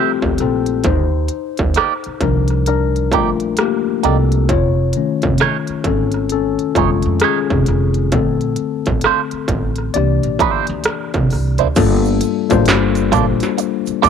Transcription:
Already playing: tine electric piano F3 G3 A3 C4 E4 F4 G4 A4, clean electric guitar F4 G4 C5 E5
0.22 upright bass D2, kick
0.38 upright bass A#1, tine electric piano C4 A4, cross-stick, closed hi-hat
0.66 closed hi-hat
0.84 upright bass D#2, tine electric piano D#4 C5, kick, closed hi-hat
1.28 closed hi-hat
1.57 upright bass D#2, kick, closed hi-hat
1.74 clean electric guitar A#3 D#4 G4 D5, cross-stick, closed hi-hat
2.04 muted upright bass stroke, closed hi-hat
2.21 upright bass C2, tine electric piano F3 G3 D4 A#4, kick, closed hi-hat
2.48 cross-stick, closed hi-hat
2.66 tine electric piano D4 A#4, muted clean electric guitar stroke, closed hi-hat
2.96 closed hi-hat
3.12 upright bass A#1, tine electric piano A3 F4, clean electric guitar A#3 D#4 G4 D5, kick, closed hi-hat
3.40 closed hi-hat
3.57 tine electric piano A#3 G4, cross-stick, closed hi-hat
4.03 upright bass C2, clean electric guitar A#3 D#4 G4 D5, tine electric piano C4 A4, cross-stick, closed hi-hat
4.32 closed hi-hat
4.49 upright bass F1, tine electric piano F4 C#5, kick, closed hi-hat
4.93 tine electric piano D#3 A3, closed hi-hat
4.97 tine electric piano C#4
5.22 upright bass F1, kick, closed hi-hat
5.38 clean electric guitar A3 D#4 G#4, cross-stick, closed hi-hat
5.42 clean electric guitar C#5
5.67 muted upright bass stroke, closed hi-hat
5.84 upright bass G#1, tine electric piano C#4 A4, kick, closed hi-hat
6.12 cross-stick, closed hi-hat
6.29 tine electric piano A4, closed hi-hat
6.34 tine electric piano C#4
6.59 closed hi-hat
6.75 upright bass F1, tine electric piano G#3 F4, clean electric guitar A3 D#4 G#4 C#5, kick, closed hi-hat
7.02 upright bass F2, closed hi-hat
7.20 clean electric guitar A3 D#4, tine electric piano C#4 G#4, cross-stick, closed hi-hat
7.24 clean electric guitar G#4 C#5
7.50 upright bass F1, kick
7.66 upright bass F1, cross-stick, closed hi-hat
7.94 closed hi-hat
8.12 upright bass A#1, tine electric piano D3 A3 C4 A4, kick, closed hi-hat
8.41 closed hi-hat
8.56 closed hi-hat
8.86 upright bass A#1, kick, closed hi-hat
9.01 clean electric guitar A3, cross-stick, closed hi-hat
9.05 clean electric guitar D4 F4 C5
9.31 muted upright bass stroke, closed hi-hat
9.48 upright bass A1, kick, closed hi-hat
9.76 cross-stick, closed hi-hat
9.94 upright bass C2, tine electric piano E3 A#3 D4 G4 D5, muted clean electric guitar stroke, closed hi-hat
10.23 upright bass A#1, closed hi-hat
10.39 clean electric guitar A#3 D4 E4 C5, kick, closed hi-hat
10.67 upright bass D2, closed hi-hat
10.84 cross-stick, closed hi-hat
11.14 upright bass C2, kick, closed hi-hat
11.30 upright bass C2, cross-stick, open hi-hat
11.58 upright bass D2, clean electric guitar A#3 D4 E4 C5, closed hi-hat
11.76 upright bass G1, tine electric piano G3 A#3 D4 F4 A4, kick, closed hi-hat, crash, shaker
12.05 shaker
12.21 closed hi-hat, shaker
12.50 upright bass A1, tine electric piano G3 A#3 D4 F4 C5, kick, closed hi-hat, shaker
12.66 upright bass G1, finger snap, snare, clap, closed hi-hat, shaker
12.95 closed hi-hat, shaker
13.12 upright bass A#1, clean electric guitar A#3 F4 A4 D5, kick, closed hi-hat, shaker
13.40 snare, closed hi-hat, shaker
13.58 muted clean electric guitar stroke, closed hi-hat, shaker
13.86 muted upright bass stroke, closed hi-hat, shaker
14.02 upright bass A#1, clean electric guitar A#3 F4 A4 D5, kick, closed hi-hat, shaker

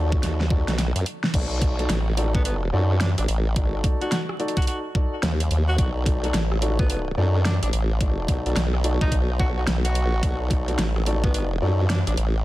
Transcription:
Already playing: wobble bass D#2
0.12 kick
0.23 wobble bass D#2, snare, closed hi-hat
0.40 snare
0.50 grand piano D#4 F#4 A4 D5, kick
0.68 wobble bass B1, snare, closed hi-hat
0.78 snare, closed hi-hat
0.95 wobble bass F#2, closed hi-hat
1.06 closed hi-hat
1.24 snare
1.34 wobble bass B1, grand piano D#4 F#4 A4 D5, kick, closed hi-hat, crash
1.62 grand piano D#4 F#4 A4 D5, kick, closed hi-hat
1.79 grand piano D#4 F#4 A4 D5, closed hi-hat
1.89 wobble bass A1, snare, closed hi-hat
2.17 grand piano D#4 F#4 A4 D5, closed hi-hat
2.35 tenor saxophone B3, grand piano D#4 F#4 D5, kick
2.45 tenor saxophone B3, closed hi-hat
2.73 wobble bass F#2, grand piano D#4 F#4 A4 D5
3.01 tenor saxophone D4, snare, closed hi-hat
3.18 wobble bass A1, tenor saxophone D4, cross-stick, closed hi-hat
3.28 wobble bass A1, closed hi-hat
3.56 grand piano D#4 F#4 A4 D5, kick, closed hi-hat
3.84 grand piano D#4 F#4 A4 D5, kick, closed hi-hat
4.01 grand piano D#4 F#4 A4 D5, tenor saxophone F#4, closed hi-hat
4.12 tenor saxophone F#4, snare, closed hi-hat
4.29 cross-stick
4.39 grand piano D#4 F#4 A4 D5, closed hi-hat
4.48 closed hi-hat
4.57 grand piano D#4 F#4 D5, tenor saxophone F#4, kick, closed hi-hat
4.62 closed hi-hat
4.67 tenor saxophone F#4, closed hi-hat
4.95 grand piano D#4 F#4 A4 D5, kick
5.23 wobble bass D#2, snare, closed hi-hat
5.40 closed hi-hat
5.51 wobble bass D#2, closed hi-hat
5.68 tenor saxophone F#4
5.78 wobble bass B1, grand piano D#4 F#4 A4 D5, tenor saxophone F#4, kick, closed hi-hat
6.06 grand piano D#4 F#4 A4 D5, kick, closed hi-hat
6.24 grand piano D#4 F#4 A4 D5, closed hi-hat
6.34 wobble bass A1, snare, closed hi-hat
6.52 cross-stick
6.62 grand piano D#4 F#4 A4 D5, closed hi-hat
6.79 tenor saxophone B3, grand piano F#4 A4 D5, kick
6.90 tenor saxophone B3, closed hi-hat
7.17 wobble bass F#2, grand piano D#4 F#4 A4 D5
7.45 tenor saxophone D4, snare, closed hi-hat
7.62 wobble bass A1, tenor saxophone D4, cross-stick, closed hi-hat
7.73 wobble bass A1, closed hi-hat
8.01 grand piano D#4 F#4 A4 D5, kick, closed hi-hat
8.28 wobble bass B1, grand piano D#4 F#4 A4 D5, kick, closed hi-hat
8.46 wobble bass B1, grand piano D#4 F#4 A4 D5, closed hi-hat
8.56 wobble bass B1, snare, closed hi-hat
8.74 cross-stick
8.84 grand piano D#4 F#4 A4 D5, closed hi-hat
9.01 wobble bass B1, tenor saxophone D#4, kick
9.12 wobble bass B1, kick, closed hi-hat
9.39 grand piano D#4 F#4 A4 D5, tenor saxophone F#4, kick
9.57 tenor saxophone F#4
9.67 wobble bass B1, snare, closed hi-hat
9.85 tenor saxophone F#4, closed hi-hat
9.95 closed hi-hat
10.23 wobble bass B1, grand piano D#4 F#4 A4 D5, kick, closed hi-hat
10.51 grand piano D#4 F#4 A4 D5, kick, closed hi-hat
10.68 grand piano D#4 F#4 A4 D5, closed hi-hat
10.79 wobble bass A1, snare, closed hi-hat
10.96 cross-stick
11.06 grand piano D#4 F#4 A4 D5, closed hi-hat
11.24 tenor saxophone B3, grand piano D#4 F#4 A4 D5, kick
11.34 tenor saxophone B3, closed hi-hat
11.62 wobble bass F#2, grand piano D#4 F#4 A4 D5
11.89 tenor saxophone D4, snare, closed hi-hat
12.07 wobble bass A1, tenor saxophone D4, cross-stick, closed hi-hat
12.17 wobble bass A1, closed hi-hat

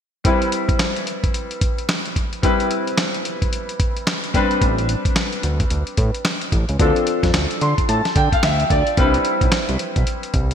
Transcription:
0.24 grand piano G3 C4 E4 B4, kick, closed hi-hat
0.42 closed hi-hat
0.52 closed hi-hat
0.69 kick, closed hi-hat
0.79 snare, clap, closed hi-hat
0.96 closed hi-hat
1.07 closed hi-hat
1.24 kick, closed hi-hat
1.34 closed hi-hat
1.51 closed hi-hat
1.61 kick, closed hi-hat
1.78 closed hi-hat
1.89 snare, clap, closed hi-hat
2.05 closed hi-hat
2.16 kick, closed hi-hat
2.33 closed hi-hat
2.42 grand piano G3 C4 E4 B4, kick, closed hi-hat
2.60 closed hi-hat
2.71 closed hi-hat
2.87 closed hi-hat
2.98 snare, clap, closed hi-hat
3.14 closed hi-hat
3.25 closed hi-hat
3.42 kick, closed hi-hat
3.53 closed hi-hat
3.69 closed hi-hat
3.80 kick, closed hi-hat
3.97 closed hi-hat
4.07 snare, clap, closed hi-hat
4.24 closed hi-hat
4.34 grand piano G3 C4 D4 B4, kick, closed hi-hat
4.51 closed hi-hat
4.61 analog synth bass A1, kick, closed hi-hat
4.78 closed hi-hat
4.89 closed hi-hat
5.05 kick, closed hi-hat
5.16 snare, clap, closed hi-hat
5.33 closed hi-hat
5.43 analog synth bass D2, closed hi-hat
5.60 kick, closed hi-hat
5.70 analog synth bass D2, closed hi-hat
5.87 closed hi-hat
5.97 analog synth bass A2, kick, closed hi-hat
6.15 closed hi-hat
6.25 snare, clap, closed hi-hat
6.41 closed hi-hat
6.52 analog synth bass A1, kick, closed hi-hat
6.69 analog synth bass C#2, closed hi-hat
6.79 analog synth bass D2, grand piano F3 C4 D4 A4, kick, closed hi-hat
6.96 closed hi-hat
7.07 closed hi-hat
7.23 analog synth bass F2, kick, snare, closed hi-hat
7.34 analog synth bass D2, snare, clap, closed hi-hat
7.51 closed hi-hat
7.61 analog synth bass D3, grand piano C6, closed hi-hat
7.78 kick, closed hi-hat
7.89 analog synth bass A2, grand piano A5, closed hi-hat
8.05 snare, closed hi-hat
8.16 analog synth bass D3, grand piano G5, kick, closed hi-hat
8.32 grand piano F5, kick, closed hi-hat
8.43 analog synth bass D2, grand piano E5, snare, clap, closed hi-hat
8.60 closed hi-hat
8.70 analog synth bass D2, grand piano D5, kick, closed hi-hat
8.87 closed hi-hat
8.97 analog synth bass C2, grand piano G3 C4 D4 B4, kick, closed hi-hat
9.05 grand piano E4
9.14 closed hi-hat
9.25 closed hi-hat
9.41 analog synth bass B1, kick, closed hi-hat
9.52 snare, clap, closed hi-hat
9.69 analog synth bass C2, closed hi-hat
9.79 closed hi-hat
9.96 analog synth bass B1, kick, closed hi-hat
10.07 closed hi-hat
10.23 closed hi-hat
10.34 analog synth bass C2, kick, closed hi-hat
10.51 closed hi-hat

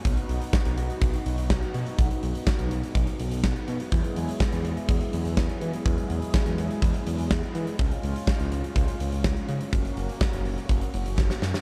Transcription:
Already playing: analog synth pad F#4
0.05 analog synth bass B1, analog synth pad B3 D#4, kick, closed hi-hat
0.17 closed hi-hat
0.29 analog synth bass B1, closed hi-hat
0.42 closed hi-hat
0.53 kick, snare
0.65 analog synth bass B1, closed hi-hat
0.78 analog synth bass B1, closed hi-hat
0.90 closed hi-hat
1.02 analog synth bass B1, kick, closed hi-hat
1.14 closed hi-hat
1.26 analog synth bass B1, closed hi-hat
1.38 analog synth bass B1, closed hi-hat
1.50 analog synth bass B1, kick, snare
1.62 closed hi-hat
1.74 analog synth bass B2, closed hi-hat
1.87 closed hi-hat
1.99 analog synth bass B1, kick, closed hi-hat
2.11 closed hi-hat
2.23 analog synth bass B1, closed hi-hat
2.35 closed hi-hat
2.47 kick, snare
2.59 analog synth bass B1, closed hi-hat
2.71 analog synth bass B1, closed hi-hat
2.83 closed hi-hat
2.95 analog synth bass B1, kick, closed hi-hat
3.07 closed hi-hat
3.19 analog synth bass B1, closed hi-hat
3.31 analog synth bass B1, closed hi-hat
3.44 analog synth bass B1, kick, snare
3.56 closed hi-hat
3.68 analog synth bass B2, closed hi-hat
3.80 closed hi-hat
3.92 analog synth bass E2, analog synth pad F#3 G#3 E4 G#4, kick, closed hi-hat
4.04 closed hi-hat
4.16 analog synth bass E2, closed hi-hat
4.29 closed hi-hat
4.40 kick, snare
4.52 analog synth bass E2, closed hi-hat
4.65 analog synth bass E2, closed hi-hat
4.77 closed hi-hat
4.89 analog synth bass E2, kick, closed hi-hat
5.01 closed hi-hat
5.13 analog synth bass E2, closed hi-hat
5.25 analog synth bass E2, closed hi-hat
5.37 analog synth bass E2, kick, snare
5.49 closed hi-hat
5.61 analog synth bass E3, closed hi-hat
5.73 closed hi-hat
5.86 analog synth bass E2, kick, closed hi-hat
5.98 closed hi-hat
6.10 analog synth bass E2, closed hi-hat
6.22 closed hi-hat
6.34 kick, snare
6.46 analog synth bass E2, closed hi-hat
6.58 analog synth bass E2, closed hi-hat
6.71 closed hi-hat
6.82 analog synth bass E2, kick, closed hi-hat
6.94 closed hi-hat
7.07 analog synth bass E2, closed hi-hat
7.19 analog synth bass E2, closed hi-hat
7.31 analog synth bass E2, kick, snare
7.43 closed hi-hat
7.55 analog synth bass E3, closed hi-hat
7.67 closed hi-hat
7.79 analog synth bass C#2, analog synth pad C#4 F4, kick, closed hi-hat
7.91 closed hi-hat
8.03 analog synth bass C#2, closed hi-hat
8.16 closed hi-hat
8.27 kick, snare
8.40 analog synth bass C#2, closed hi-hat
8.52 analog synth bass C#2, closed hi-hat
8.64 closed hi-hat
8.76 analog synth bass C#2, kick, closed hi-hat
8.88 closed hi-hat
9.00 analog synth bass C#2, closed hi-hat
9.12 analog synth bass C#2, closed hi-hat
9.24 analog synth bass C#2, kick, snare
9.37 closed hi-hat
9.49 analog synth bass C#3, closed hi-hat
9.61 closed hi-hat
9.73 analog synth bass F#1, analog synth pad A#3 F#4, kick, closed hi-hat
9.85 closed hi-hat
9.97 analog synth bass F#1, closed hi-hat
10.09 closed hi-hat
10.21 kick, snare
10.33 analog synth bass F#1, closed hi-hat
10.45 analog synth bass F#1, open hi-hat
10.58 closed hi-hat
10.69 analog synth bass F#1, kick, closed hi-hat
10.81 closed hi-hat
10.94 analog synth bass F#1, closed hi-hat
11.06 analog synth bass F#1, closed hi-hat
11.18 analog synth bass F#1, kick, snare
11.30 snare
11.42 analog synth bass F#2, snare
11.54 snare

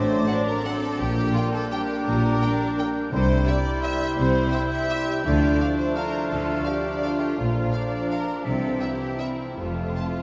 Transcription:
Already playing: double bass section A1, cello section A2, harp A2 D4, bassoon F#3, viola section A3, clarinet D4, violin section C5, oboe A5, flute section D6
0.09 harp F#3
0.28 french horn section F#3 D4, harp A3, viola section D4, violin section F#5
0.46 harp D4, violin section A#4
0.65 french horn section F#3 D4, viola section C4, harp F#4, violin section A4 F#5
0.83 harp D4
0.99 double bass section A#1, harp A#2, cello section A#2, bassoon G3, viola section A#3, clarinet D4, violin section G4, oboe G5, flute section D6
1.17 harp A#3
1.35 harp G3, french horn section G3 D4, violin section F4 G5
1.53 harp D4, violin section A4
1.72 french horn section G3 D4, violin section G4 G5, harp G4
2.06 double bass section A#1, harp A#2, cello section A#2, viola section G3, violin section A#4
2.23 harp A#3
2.41 harp G3, french horn section G3 D4, viola section D4, violin section G5
2.79 french horn section G3 D4, viola section A#3, harp G4, violin section G5
2.96 harp D4
3.12 double bass section C2, timpani C3, cello section C3, harp C3, french horn section G3 E4, bassoon G3, viola section A3, clarinet E4, violin section C5, oboe G5, flute section C6
3.30 harp G3
3.46 viola section G3, harp C4, violin section D5 E5
3.65 harp E4
3.83 harp G4, violin section E5
4.01 harp E4
4.18 double bass section C2, cello section C3, harp C3, viola section C4, violin section C5
4.53 harp C4, viola section E4, violin section E5
4.71 harp E4, violin section E5
4.90 viola section G4, violin section E5
5.23 double bass section D2, cello section D3, harp D3, french horn section F3 D4, bassoon A3, clarinet D4, viola section F4, violin section D5, flute section A5
5.42 harp A3
5.60 viola section D4, violin section F5
5.78 harp F4, violin section C5
5.96 viola section F4, harp A4, violin section A#4 F5, oboe F5
6.13 harp F4
6.30 double bass section D2, harp D3, cello section D3, violin section A4
6.47 harp A3
6.65 harp D4, viola section G4, violin section D5 F5
6.84 harp F4
7.03 viola section F4, harp A4, violin section F5
7.20 violin section G4
7.37 double bass section A#1, cello section A#2, harp A#2, french horn section F3 D4, bassoon F3, clarinet D4, violin section F4, oboe F5, flute section A#5
7.55 harp F3
7.73 viola section D4, violin section D5 F5
7.92 harp D4
8.10 harp F4, violin section A#4 F5
8.45 double bass section C2, bassoon C3, cello section C3, harp C3, french horn section E3 C4, clarinet C4, viola section C4, violin section A4, oboe E5, flute section G5
8.63 harp G3
8.81 harp C4, viola section E4, violin section G4 E5
9.01 harp E4
9.20 viola section C4, violin section E4 E5
9.40 harp E4
9.57 double bass section F1, cello section F2, bassoon C3, harp F3, french horn section A3 C4, viola section A3, clarinet C4, violin section F4, oboe F5, flute section A5
9.78 harp A3
9.98 french horn section F3, harp C4, violin section A5
10.19 harp F4

